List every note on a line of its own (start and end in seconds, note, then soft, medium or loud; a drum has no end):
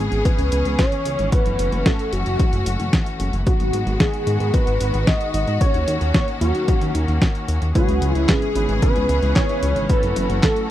0.00 3.43 E3 medium
0.00 1.30 B3 medium
0.00 3.43 C#4 medium
0.00 0.27 G#4 medium
0.00 1.30 G#4 medium
0.12 0.23 G#1 medium
0.12 closed hi-hat soft
0.25 0.78 B4 loud
0.25 kick loud
0.25 closed hi-hat medium
0.39 0.50 C#2 medium
0.39 closed hi-hat soft
0.52 0.63 C#2 medium
0.52 closed hi-hat medium
0.65 0.76 C#2 medium
0.65 closed hi-hat soft
0.79 1.34 C#5 loud
0.79 kick loud
0.79 snare loud
0.79 closed hi-hat medium
0.92 closed hi-hat soft
1.05 1.17 C#2 medium
1.05 closed hi-hat medium
1.19 1.30 G#1 medium
1.19 closed hi-hat soft
1.32 3.44 A3 medium
1.32 3.44 F#4 medium
1.32 1.87 B4 loud
1.32 kick loud
1.32 closed hi-hat medium
1.46 1.57 F#1 medium
1.46 closed hi-hat soft
1.59 1.70 F#1 medium
1.59 closed hi-hat medium
1.72 1.84 F#1 medium
1.72 closed hi-hat soft
1.86 2.14 A4 loud
1.86 kick loud
1.86 snare loud
1.86 closed hi-hat medium
1.99 closed hi-hat soft
2.13 2.24 F#1 medium
2.13 2.66 F#4 medium
2.13 closed hi-hat medium
2.26 2.37 F#1 medium
2.26 closed hi-hat soft
2.39 kick loud
2.39 closed hi-hat medium
2.53 2.64 F#1 medium
2.53 closed hi-hat soft
2.66 2.77 F#1 medium
2.66 closed hi-hat medium
2.80 2.91 F#1 medium
2.80 closed hi-hat soft
2.93 kick loud
2.93 snare loud
2.93 closed hi-hat medium
3.06 closed hi-hat soft
3.20 3.31 F#1 medium
3.20 closed hi-hat medium
3.33 3.44 F#1 medium
3.33 closed hi-hat soft
3.46 5.59 D#3 medium
3.46 5.59 G#3 medium
3.46 5.59 B3 medium
3.46 7.71 F#4 medium
3.46 3.96 F#4 medium
3.46 kick loud
3.46 closed hi-hat medium
3.60 3.71 G#1 medium
3.60 closed hi-hat soft
3.73 3.84 G#1 loud
3.73 closed hi-hat medium
3.87 3.98 G#1 medium
3.87 closed hi-hat soft
4.00 4.55 G#4 loud
4.00 kick loud
4.00 snare loud
4.00 closed hi-hat medium
4.14 closed hi-hat soft
4.27 4.38 G#2 medium
4.27 closed hi-hat medium
4.40 4.51 G#2 medium
4.40 closed hi-hat soft
4.54 5.09 B4 loud
4.54 kick loud
4.54 closed hi-hat medium
4.67 4.78 G#1 medium
4.67 closed hi-hat soft
4.80 4.92 G#1 medium
4.80 closed hi-hat medium
4.94 5.05 G#1 medium
4.94 closed hi-hat soft
5.07 5.60 D#5 loud
5.07 kick loud
5.07 snare loud
5.07 closed hi-hat medium
5.21 closed hi-hat soft
5.34 5.45 G#1 medium
5.34 closed hi-hat medium
5.47 5.59 G#2 medium
5.47 closed hi-hat soft
5.61 7.73 D#3 medium
5.61 7.73 A#3 medium
5.61 7.73 C#4 medium
5.61 6.11 C#5 loud
5.61 kick loud
5.61 closed hi-hat medium
5.74 5.85 D#2 medium
5.74 closed hi-hat soft
5.88 5.99 D#2 loud
5.88 closed hi-hat medium
6.01 6.12 D#2 medium
6.01 closed hi-hat soft
6.14 6.26 C#5 medium
6.14 kick loud
6.14 snare loud
6.14 closed hi-hat medium
6.28 closed hi-hat soft
6.41 6.52 D#2 medium
6.41 6.91 F#4 medium
6.41 closed hi-hat medium
6.55 6.66 D#2 medium
6.55 closed hi-hat soft
6.68 kick loud
6.68 closed hi-hat medium
6.81 6.93 D#2 medium
6.81 closed hi-hat soft
6.95 7.06 D#2 medium
6.95 closed hi-hat medium
7.08 7.19 D#2 medium
7.08 closed hi-hat soft
7.22 kick loud
7.22 snare loud
7.22 closed hi-hat medium
7.35 closed hi-hat soft
7.48 7.59 D#2 medium
7.48 closed hi-hat medium
7.62 7.73 D#2 medium
7.62 closed hi-hat soft
7.75 8.12 C#3 medium
7.75 9.87 E3 medium
7.75 8.12 G#3 medium
7.75 9.87 B3 medium
7.75 10.71 C#4 medium
7.75 8.12 C#4 medium
7.75 8.12 E4 medium
7.75 8.14 F#4 medium
7.75 9.87 G#4 medium
7.75 8.12 B4 loud
7.75 kick loud
7.75 closed hi-hat medium
7.89 8.00 C#2 medium
7.89 closed hi-hat soft
8.02 8.13 C#2 medium
8.02 closed hi-hat medium
8.14 8.27 C#2 medium
8.14 8.52 C#3 medium
8.14 8.52 G#3 medium
8.14 8.52 C#4 medium
8.14 8.30 E4 medium
8.14 8.52 E4 medium
8.14 8.52 B4 medium
8.14 closed hi-hat soft
8.29 8.82 G#4 medium
8.29 kick loud
8.29 snare loud
8.29 clap medium
8.29 closed hi-hat medium
8.42 closed hi-hat soft
8.55 8.67 G#1 medium
8.55 8.93 C#3 medium
8.55 8.93 G#3 medium
8.55 8.93 C#4 medium
8.55 8.93 E4 medium
8.55 8.93 B4 loud
8.55 closed hi-hat medium
8.69 8.80 G#1 medium
8.69 closed hi-hat soft
8.82 9.32 B4 loud
8.82 kick loud
8.82 closed hi-hat medium
8.96 9.07 C#2 medium
8.96 9.10 C#3 medium
8.96 9.10 G#3 medium
8.96 9.10 C#4 medium
8.96 9.10 E4 medium
8.96 9.10 B4 medium
8.96 closed hi-hat soft
9.09 9.20 C#2 medium
9.09 closed hi-hat medium
9.23 9.34 C#2 medium
9.23 9.46 C#3 medium
9.23 9.46 G#3 medium
9.23 9.46 C#4 medium
9.23 9.46 E4 medium
9.23 9.46 B4 loud
9.23 closed hi-hat soft
9.36 9.91 C#5 loud
9.36 kick loud
9.36 snare loud
9.36 clap medium
9.36 closed hi-hat medium
9.49 9.86 C#3 medium
9.49 9.86 G#3 medium
9.49 9.86 C#4 medium
9.49 9.86 E4 medium
9.49 9.86 B4 loud
9.49 closed hi-hat soft
9.63 9.74 C#2 medium
9.63 closed hi-hat medium
9.76 9.87 G#1 medium
9.76 closed hi-hat soft
9.89 10.71 E3 medium
9.89 10.26 F#3 medium
9.89 10.71 A3 medium
9.89 10.26 C#4 medium
9.89 10.26 E4 medium
9.89 10.71 F#4 medium
9.89 10.26 A4 loud
9.89 10.43 B4 loud
9.89 kick loud
9.89 closed hi-hat medium
10.03 10.14 F#1 medium
10.03 closed hi-hat soft
10.16 10.27 F#1 loud
10.16 closed hi-hat medium
10.30 10.41 F#1 medium
10.30 10.67 F#3 medium
10.30 10.67 C#4 medium
10.30 10.67 E4 medium
10.30 10.67 A4 medium
10.30 closed hi-hat soft
10.43 10.71 A4 loud
10.43 kick loud
10.43 snare loud
10.43 clap medium
10.43 closed hi-hat medium
10.56 closed hi-hat soft